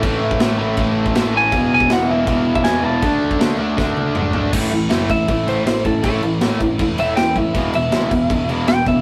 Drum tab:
CC |x---x---x---x---|x---x---x---x---|x---x-----------|x-x-x-x-x-x-x-x-|
SD |----o-------o---|----o-------o---|----o---o-------|----o-------o---|
T1 |----------------|----------------|----------o-----|----------------|
T2 |----------------|----------------|------------o---|----------------|
FT |----------------|----------------|--------------o-|----------------|
BD |o--o----o--o----|o--o----o--o----|o--o----o-------|o-----o-o-----o-|

CC |x-x-x-x-x-x-x-x-|x-x-x-x-x-x-x-x-|
SD |----o-------o---|----o-------o---|
T1 |----------------|----------------|
T2 |----------------|----------------|
FT |----------------|----------------|
BD |o-----o-o-----o-|o-----o-o-----o-|